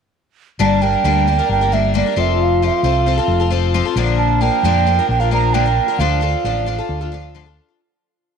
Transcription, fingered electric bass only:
0.59 0.94 G1 medium
1.04 1.39 D2 medium
1.49 2.01 G1 medium
2.17 2.69 F1 medium
2.83 3.18 C2 medium
3.28 3.80 F1 loud
3.96 4.48 A#1 medium
4.63 4.98 F2 medium
5.09 5.78 A#1 medium
5.99 6.34 D2 medium
6.44 6.79 A1 medium
6.89 7.58 D2 medium

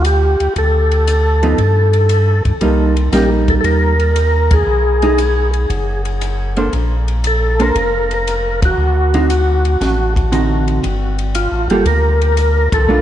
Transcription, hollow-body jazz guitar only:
1.43 1.57 F3 medium
1.43 1.58 B3 medium
1.43 1.58 D#4 medium
2.62 2.94 G3 medium
2.62 2.94 A#3 medium
2.62 2.94 D#4 medium
3.13 3.93 G3 medium
3.13 3.93 A#3 medium
3.13 3.93 D#4 medium
5.03 5.17 A3 medium
5.03 5.18 D#4 medium
5.03 5.18 G#4 medium
6.57 6.71 A#3 soft
6.57 6.72 D4 medium
6.57 6.72 A4 soft
6.57 6.72 C5 medium
7.60 7.74 A#3 medium
7.60 7.74 D4 medium
7.60 7.75 A4 medium
7.60 7.75 C5 medium
9.14 9.28 D3 medium
9.14 9.29 C4 medium
9.14 9.29 D#4 medium
9.14 9.29 F#4 medium
10.32 10.83 D3 medium
10.32 10.83 C4 medium
10.32 10.84 D#4 medium
10.32 10.84 F#4 medium
11.71 11.85 G3 medium
11.71 11.85 A#3 medium
11.71 11.85 F4 medium
11.71 11.85 A4 medium
12.89 13.02 A3 medium
12.89 13.02 D4 medium
12.89 13.02 F4 medium

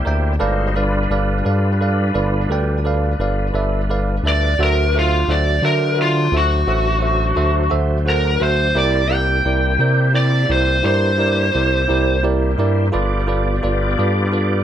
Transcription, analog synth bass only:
0.07 0.38 D2 medium
0.42 1.07 G1 medium
1.10 1.42 G1 loud
1.46 2.11 G2 loud
2.15 2.47 G1 loud
2.49 3.15 D2 medium
3.19 3.51 G1 medium
3.54 4.20 G1 loud
4.23 4.55 D2 medium
4.59 5.24 D2 medium
5.28 5.60 D2 medium
5.62 6.28 D3 loud
6.32 6.64 D2 loud
6.67 7.33 A1 loud
7.37 7.69 D2 medium
7.72 8.38 D2 loud
8.41 8.73 D2 medium
8.75 9.41 C2 loud
9.45 9.78 C2 medium
9.79 10.45 C3 loud
10.49 10.82 C2 loud
10.84 11.50 G2 medium
11.55 11.87 C2 loud
11.90 12.55 C2 loud
12.58 12.91 G2 medium
12.95 13.60 G1 medium
13.64 13.96 G1 medium
13.99 14.64 G2 loud

